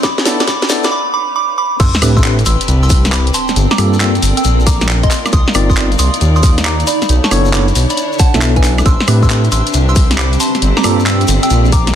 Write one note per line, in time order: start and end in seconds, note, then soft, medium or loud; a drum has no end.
0.03 0.91 D4 medium
0.03 0.91 E4 medium
0.03 0.91 F#4 medium
0.03 0.91 A4 medium
0.03 0.91 C#5 medium
0.03 0.25 B5 medium
0.03 0.25 D6 loud
0.03 kick loud
0.03 snare medium
0.03 closed hi-hat medium
0.03 shekere medium
0.18 snare medium
0.18 shekere soft
0.25 0.43 B3 loud
0.25 0.43 D4 medium
0.25 0.43 E4 medium
0.25 0.43 A4 medium
0.25 0.43 D5 loud
0.25 snare loud
0.25 open hi-hat loud
0.25 shekere loud
0.40 0.46 B5 medium
0.40 0.46 D6 medium
0.40 snare medium
0.40 closed hi-hat medium
0.40 shekere soft
0.47 0.69 B5 medium
0.47 0.69 D6 loud
0.47 kick loud
0.47 snare loud
0.47 closed hi-hat medium
0.47 shekere medium
0.62 snare medium
0.62 shekere soft
0.69 0.87 B3 loud
0.69 0.87 D4 medium
0.69 0.87 E4 medium
0.69 0.87 A4 medium
0.69 0.87 D5 loud
0.69 snare loud
0.69 open hi-hat loud
0.69 shekere loud
0.84 0.90 B5 medium
0.84 0.90 D6 medium
0.84 snare medium
0.84 closed hi-hat soft
0.84 shekere soft
0.92 1.12 B5 medium
0.92 1.12 D6 loud
1.14 1.34 B5 medium
1.14 1.35 D6 loud
1.36 1.57 B5 medium
1.36 1.57 D6 loud
1.58 1.79 B5 medium
1.58 1.79 D6 loud
1.80 1.90 A1 loud
1.80 5.07 C4 medium
1.80 5.93 C4 medium
1.80 3.55 D4 medium
1.80 3.55 G4 medium
1.80 3.55 B4 medium
1.80 2.01 C6 medium
1.80 2.01 E6 loud
1.80 kick loud
1.80 closed hi-hat medium
1.80 crash loud
1.80 sub drop medium
1.80 shekere medium
1.94 snare medium
1.94 shekere soft
2.01 2.43 A2 loud
2.01 2.19 A3 medium
2.01 2.19 C4 medium
2.01 2.19 D4 medium
2.01 2.19 G4 medium
2.01 2.19 B4 loud
2.01 4.20 G5 medium
2.01 open hi-hat loud
2.01 high woodblock medium
2.01 shekere medium
2.17 2.37 C6 medium
2.17 2.37 E6 medium
2.17 kick medium
2.17 shekere soft
2.24 2.36 A3 medium
2.24 2.36 C4 medium
2.24 2.36 D4 medium
2.24 2.36 G4 medium
2.24 2.36 B4 medium
2.24 clap loud
2.24 closed hi-hat medium
2.24 shekere medium
2.39 closed hi-hat soft
2.39 shekere soft
2.46 2.56 A1 medium
2.46 2.67 C6 medium
2.46 2.67 E6 loud
2.46 open hi-hat loud
2.46 shekere medium
2.61 4.20 D5 loud
2.61 closed hi-hat medium
2.61 shekere soft
2.68 3.31 C2 medium
2.68 closed hi-hat medium
2.68 shekere medium
2.83 3.03 C6 medium
2.83 3.03 E6 loud
2.83 shekere soft
2.90 kick loud
2.90 open hi-hat loud
2.90 shekere medium
3.05 snare medium
3.05 closed hi-hat medium
3.05 shekere soft
3.12 3.29 B5 medium
3.12 3.29 D6 medium
3.12 clap loud
3.12 high woodblock medium
3.12 shekere medium
3.27 closed hi-hat medium
3.27 shekere soft
3.34 3.56 A5 medium
3.34 3.56 C6 medium
3.34 open hi-hat loud
3.34 shekere loud
3.48 snare soft
3.48 closed hi-hat soft
3.48 shekere soft
3.56 3.67 G1 loud
3.56 7.06 F4 medium
3.56 5.09 A4 medium
3.56 7.06 A#4 medium
3.56 closed hi-hat medium
3.56 shekere medium
3.71 3.92 A#5 medium
3.71 3.92 D6 medium
3.71 snare medium
3.71 shekere soft
3.78 4.19 G2 loud
3.78 3.95 G3 medium
3.78 3.95 A#3 medium
3.78 3.95 C4 medium
3.78 3.95 F4 medium
3.78 3.95 A4 loud
3.78 open hi-hat loud
3.78 high woodblock medium
3.78 shekere medium
3.86 5.93 A#3 medium
3.93 shekere soft
3.99 4.13 G3 medium
3.99 4.13 A#3 medium
3.99 4.13 C4 medium
3.99 4.13 F4 medium
3.99 4.13 A4 medium
3.99 4.22 G5 medium
3.99 4.22 E6 loud
3.99 clap loud
3.99 closed hi-hat medium
3.99 shekere medium
4.15 closed hi-hat soft
4.15 shekere soft
4.20 4.33 G1 medium
4.20 7.09 F5 medium
4.20 open hi-hat loud
4.20 shekere medium
4.37 4.58 G5 medium
4.37 4.58 E6 medium
4.37 closed hi-hat medium
4.37 shekere soft
4.44 5.07 A#1 medium
4.44 closed hi-hat medium
4.44 shekere medium
4.60 shekere soft
4.66 4.88 A#5 medium
4.66 4.88 D6 medium
4.66 kick loud
4.66 open hi-hat loud
4.66 shekere loud
4.81 snare medium
4.81 closed hi-hat medium
4.81 shekere soft
4.89 clap loud
4.89 shekere medium
5.03 5.24 D#5 medium
5.03 5.24 C6 loud
5.03 kick medium
5.03 closed hi-hat soft
5.03 shekere soft
5.11 7.07 D#4 medium
5.11 7.09 D#4 loud
5.11 7.07 D5 medium
5.11 clap medium
5.11 open hi-hat loud
5.11 shekere medium
5.26 snare soft
5.26 closed hi-hat soft
5.26 high woodblock medium
5.26 shekere soft
5.32 5.43 C2 loud
5.32 7.09 D5 medium
5.32 5.54 C6 medium
5.32 5.54 D#6 loud
5.32 kick loud
5.32 closed hi-hat medium
5.32 shekere medium
5.47 snare medium
5.47 shekere soft
5.54 5.96 G1 loud
5.54 5.72 C4 medium
5.54 5.72 D#4 medium
5.54 5.72 F4 medium
5.54 5.72 A#4 medium
5.54 5.72 D5 loud
5.54 7.09 A#5 medium
5.54 open hi-hat loud
5.54 high woodblock medium
5.54 shekere loud
5.70 5.90 C6 medium
5.70 5.90 D#6 medium
5.70 kick medium
5.70 shekere soft
5.77 5.89 C4 medium
5.77 5.89 D#4 medium
5.77 5.89 F4 medium
5.77 5.89 A#4 medium
5.77 5.89 D5 loud
5.77 clap loud
5.77 closed hi-hat medium
5.77 shekere medium
5.92 closed hi-hat soft
5.92 shekere soft
5.99 6.09 C2 medium
5.99 6.20 C6 medium
5.99 6.20 D#6 loud
5.99 open hi-hat loud
5.99 shekere loud
6.14 closed hi-hat medium
6.14 shekere soft
6.21 6.84 D#2 medium
6.21 closed hi-hat medium
6.21 shekere soft
6.36 6.57 C6 medium
6.36 6.57 D#6 medium
6.36 shekere soft
6.43 kick loud
6.43 open hi-hat loud
6.43 shekere loud
6.58 snare medium
6.58 closed hi-hat medium
6.58 shekere soft
6.65 6.82 A#5 medium
6.65 6.82 D6 medium
6.65 clap loud
6.65 high woodblock medium
6.65 shekere medium
6.80 closed hi-hat medium
6.80 shekere soft
6.87 7.09 D5 medium
6.87 7.09 B5 loud
6.87 open hi-hat loud
6.87 shekere loud
7.02 snare soft
7.02 closed hi-hat soft
7.02 shekere soft
7.09 7.20 B1 loud
7.09 9.58 D4 medium
7.09 10.59 D4 medium
7.09 8.84 E4 medium
7.09 8.84 A4 medium
7.09 8.84 C#5 medium
7.09 closed hi-hat medium
7.09 shekere medium
7.24 7.45 A5 medium
7.24 7.45 C#6 loud
7.24 snare medium
7.24 shekere soft
7.31 7.72 F#1 loud
7.31 7.48 B3 loud
7.31 7.48 D4 medium
7.31 7.48 E4 medium
7.31 7.48 A4 medium
7.31 7.48 C#5 loud
7.31 open hi-hat loud
7.31 high woodblock medium
7.31 shekere medium
7.45 shekere soft
7.51 7.66 B3 medium
7.51 7.66 D4 medium
7.51 7.66 E4 medium
7.51 7.66 A4 medium
7.51 8.86 C#5 medium
7.51 7.66 C#5 loud
7.51 7.75 B5 medium
7.51 7.75 D6 medium
7.51 clap loud
7.51 closed hi-hat medium
7.51 shekere medium
7.68 closed hi-hat soft
7.68 shekere soft
7.75 7.86 B1 medium
7.75 9.50 A5 medium
7.75 open hi-hat loud
7.75 shekere loud
7.90 8.11 D5 medium
7.90 9.58 E5 medium
7.90 8.11 B5 medium
7.90 closed hi-hat medium
7.90 shekere soft
7.97 closed hi-hat medium
7.97 shekere soft
8.12 shekere soft
8.19 8.41 F#5 medium
8.19 8.41 A5 medium
8.19 kick loud
8.19 open hi-hat loud
8.19 shekere loud
8.34 8.82 B1 medium
8.34 8.85 B3 medium
8.34 8.85 D4 medium
8.34 8.85 E4 medium
8.34 8.85 A4 medium
8.34 8.85 E5 medium
8.34 snare medium
8.34 closed hi-hat medium
8.34 shekere soft
8.42 clap loud
8.42 shekere medium
8.56 8.77 B4 medium
8.56 8.77 G#5 medium
8.56 kick medium
8.56 closed hi-hat soft
8.56 shekere soft
8.64 clap medium
8.64 open hi-hat loud
8.64 shekere loud
8.78 snare soft
8.78 closed hi-hat soft
8.78 high woodblock medium
8.78 shekere soft
8.86 8.96 A1 loud
8.86 11.95 C4 medium
8.86 10.60 G4 medium
8.86 10.60 B4 medium
8.86 11.95 C5 medium
8.86 9.07 C6 medium
8.86 9.07 E6 loud
8.86 kick loud
8.86 closed hi-hat medium
8.86 shekere soft
9.00 snare medium
9.00 shekere soft
9.08 9.48 A2 loud
9.08 9.25 A3 loud
9.08 9.25 C4 medium
9.08 9.25 D4 medium
9.08 9.25 G4 medium
9.08 11.25 G4 medium
9.08 9.25 B4 loud
9.08 open hi-hat loud
9.08 high woodblock medium
9.08 shekere medium
9.23 9.43 C6 medium
9.23 9.43 E6 medium
9.23 kick medium
9.23 shekere soft
9.30 9.42 A3 medium
9.30 9.42 C4 medium
9.30 9.42 D4 medium
9.30 9.42 G4 medium
9.30 9.42 B4 medium
9.30 clap loud
9.30 closed hi-hat medium
9.30 shekere medium
9.44 closed hi-hat soft
9.44 shekere soft
9.52 9.62 A1 medium
9.52 9.73 C6 medium
9.52 9.73 E6 loud
9.52 open hi-hat loud
9.52 shekere loud
9.67 11.25 D5 medium
9.67 closed hi-hat medium
9.67 shekere soft
9.73 10.37 C2 medium
9.73 closed hi-hat medium
9.73 shekere medium
9.88 10.09 C6 medium
9.88 10.09 E6 medium
9.88 shekere soft
9.96 kick loud
9.96 open hi-hat loud
9.96 shekere medium
10.11 snare medium
10.11 closed hi-hat medium
10.11 shekere soft
10.18 10.35 B5 medium
10.18 10.35 D6 medium
10.18 clap loud
10.18 high woodblock medium
10.18 shekere medium
10.33 closed hi-hat medium
10.33 shekere soft
10.40 10.61 A5 medium
10.40 10.61 C6 medium
10.40 open hi-hat loud
10.40 shekere loud
10.55 snare soft
10.55 closed hi-hat soft
10.55 shekere soft
10.62 10.73 G1 loud
10.62 11.95 F4 medium
10.62 11.95 A4 medium
10.62 11.95 A#4 medium
10.62 closed hi-hat medium
10.62 shekere soft
10.77 10.98 A#5 medium
10.77 10.98 D6 medium
10.77 snare medium
10.77 shekere soft
10.84 11.25 G2 loud
10.84 11.01 G3 medium
10.84 11.01 A#3 medium
10.84 11.01 C4 medium
10.84 11.01 F4 medium
10.84 11.01 A4 loud
10.84 open hi-hat loud
10.84 high woodblock medium
10.84 shekere medium
10.97 11.95 A#3 loud
10.97 shekere soft
11.06 11.28 G5 medium
11.06 11.28 E6 medium
11.06 clap loud
11.06 closed hi-hat medium
11.06 shekere soft
11.21 closed hi-hat soft
11.21 shekere soft
11.25 11.39 G1 medium
11.25 11.95 F5 medium
11.25 open hi-hat loud
11.25 shekere medium
11.43 11.64 G5 medium
11.43 11.64 E6 medium
11.43 closed hi-hat medium
11.43 shekere soft
11.50 11.95 A#1 medium
11.50 closed hi-hat medium
11.50 shekere soft
11.65 shekere soft
11.72 11.94 A#5 medium
11.72 11.94 D6 medium
11.72 kick loud
11.72 open hi-hat loud
11.72 shekere medium
11.87 snare medium
11.87 closed hi-hat medium
11.87 shekere soft